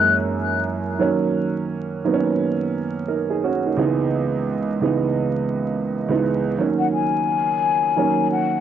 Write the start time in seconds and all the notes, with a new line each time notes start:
Already playing: F#2 E3 G#3 A#3 C#4 D#4 F#6
0.99 D#3 F#3 A#3 C#4
2.04 D#3 F#3 A#3 B3
2.14 C#4
3.08 D#4 A#4
3.30 D#4 G#4
3.44 C#4 F#4
3.66 A#3 D#4
3.77 C#2 E3 G#3 B3 D#4
4.81 C#2 E3 G#3 B3 D#4
6.09 C#2 E3 G#3 B3 D#4
6.58 D#3 F#3 A#3 C#4
6.79 F#5
6.93 G#5
7.96 D#3 F#3 A#3 C#4
8.32 F#5